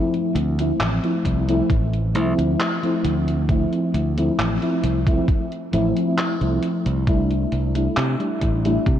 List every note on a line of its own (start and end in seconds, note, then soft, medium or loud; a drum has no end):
0.00 0.53 F3 medium
0.00 0.53 A3 medium
0.00 0.54 C4 medium
0.00 0.54 E4 medium
0.14 closed hi-hat soft
0.35 0.70 D2 loud
0.35 closed hi-hat medium
0.59 0.98 F3 medium
0.59 0.98 A3 medium
0.59 0.99 C4 medium
0.59 0.99 E4 medium
0.59 closed hi-hat medium
0.80 0.98 A1 medium
0.80 clap loud
0.80 closed hi-hat medium
1.03 1.43 F3 medium
1.03 1.43 A3 medium
1.03 1.43 C4 medium
1.03 1.43 E4 medium
1.03 closed hi-hat soft
1.25 1.60 C2 medium
1.25 kick medium
1.25 closed hi-hat loud
1.48 1.69 F3 medium
1.48 1.69 A3 medium
1.48 1.70 C4 medium
1.48 1.70 E4 loud
1.48 closed hi-hat medium
1.70 2.15 A1 medium
1.70 kick loud
1.70 closed hi-hat soft
1.94 closed hi-hat soft
2.14 2.33 C2 medium
2.14 2.77 F3 medium
2.14 2.77 A3 medium
2.14 2.77 C4 medium
2.14 2.78 E4 loud
2.14 closed hi-hat medium
2.38 2.54 D2 medium
2.38 closed hi-hat medium
2.60 clap loud
2.60 closed hi-hat medium
2.82 3.44 F3 medium
2.82 3.44 A3 medium
2.82 3.44 C4 medium
2.82 3.45 E4 medium
2.82 closed hi-hat soft
3.04 3.64 D2 loud
3.04 closed hi-hat medium
3.28 closed hi-hat medium
3.49 4.11 F3 medium
3.49 4.12 A3 medium
3.49 4.12 C4 medium
3.49 4.12 E4 medium
3.49 kick loud
3.49 closed hi-hat soft
3.73 closed hi-hat soft
3.94 4.28 D2 medium
3.94 closed hi-hat medium
4.17 4.56 F3 medium
4.17 4.56 A3 medium
4.17 4.57 C4 medium
4.17 4.57 E4 medium
4.17 closed hi-hat medium
4.38 4.56 A1 medium
4.38 clap loud
4.38 closed hi-hat soft
4.61 5.01 F3 medium
4.61 5.01 A3 medium
4.61 5.01 C4 medium
4.61 5.02 E4 medium
4.61 closed hi-hat soft
4.83 5.18 C2 loud
4.83 closed hi-hat medium
5.06 5.27 F3 medium
5.06 5.27 A3 medium
5.06 5.28 C4 medium
5.06 5.28 E4 loud
5.06 kick loud
5.06 closed hi-hat medium
5.28 kick loud
5.28 closed hi-hat medium
5.52 closed hi-hat soft
5.72 5.91 A1 loud
5.72 6.35 F3 loud
5.72 6.35 A3 medium
5.72 6.36 C4 medium
5.72 6.36 E4 loud
5.72 closed hi-hat medium
5.96 closed hi-hat medium
6.18 clap loud
6.18 closed hi-hat medium
6.41 6.57 C2 medium
6.41 7.02 F3 medium
6.41 7.02 A3 medium
6.41 7.03 C4 medium
6.41 7.03 E4 medium
6.41 closed hi-hat soft
6.63 closed hi-hat loud
6.86 7.44 C2 loud
6.86 closed hi-hat medium
7.07 7.70 G3 medium
7.07 7.70 A3 medium
7.07 7.70 D4 medium
7.07 7.70 E4 medium
7.07 kick loud
7.07 closed hi-hat soft
7.31 closed hi-hat soft
7.52 7.87 C2 medium
7.52 closed hi-hat medium
7.75 8.14 G3 medium
7.75 8.15 A3 medium
7.75 8.15 D4 medium
7.75 8.15 E4 medium
7.75 closed hi-hat medium
7.97 8.15 C3 medium
7.97 clap loud
7.97 closed hi-hat soft
8.19 8.59 G3 medium
8.19 8.59 A3 medium
8.19 8.59 D4 medium
8.19 8.60 E4 medium
8.19 closed hi-hat soft
8.42 8.76 A1 medium
8.42 kick medium
8.42 closed hi-hat loud
8.64 8.85 G3 medium
8.64 8.86 A3 medium
8.64 8.86 D4 medium
8.64 8.86 E4 loud
8.64 closed hi-hat medium
8.86 8.99 C3 medium
8.86 kick loud
8.86 closed hi-hat soft